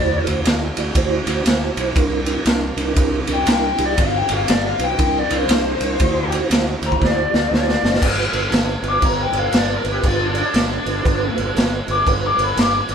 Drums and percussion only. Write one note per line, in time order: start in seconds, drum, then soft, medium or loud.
0.27 ride medium
0.45 snare loud
0.45 ride loud
0.77 ride medium
0.95 kick loud
0.95 ride loud
1.27 ride medium
1.46 snare loud
1.46 ride loud
1.77 ride medium
1.96 kick loud
1.96 ride medium
2.26 ride medium
2.46 snare loud
2.46 ride medium
2.78 ride medium
2.96 kick loud
2.96 ride medium
3.27 ride medium
3.47 snare loud
3.47 ride loud
3.78 ride medium
3.98 kick loud
3.98 ride loud
4.29 ride medium
4.48 snare loud
4.48 ride loud
4.79 ride medium
4.99 kick loud
4.99 ride loud
5.30 ride medium
5.49 snare loud
5.49 ride loud
5.81 ride medium
6.00 kick loud
6.00 ride loud
6.32 ride medium
6.51 snare loud
6.51 ride medium
6.83 ride medium
6.92 kick medium
7.02 kick loud
7.02 snare medium
7.34 snare medium
7.54 snare medium
7.69 snare medium
7.85 snare medium
7.94 snare medium
8.02 kick loud
8.02 crash loud
8.02 crash medium
8.33 crash medium
8.52 snare loud
8.52 crash medium
8.83 crash medium
9.02 kick loud
9.02 crash medium
9.33 crash medium
9.52 snare loud
9.52 crash medium
9.85 crash medium
10.04 kick loud
10.04 crash medium
10.35 crash medium
10.54 snare loud
10.54 crash medium
10.86 crash medium
11.05 kick loud
11.05 crash medium
11.38 crash medium
11.57 snare loud
11.57 crash medium
11.88 crash medium
12.07 kick loud
12.07 crash medium
12.39 crash medium
12.57 snare loud
12.57 crash medium
12.89 crash medium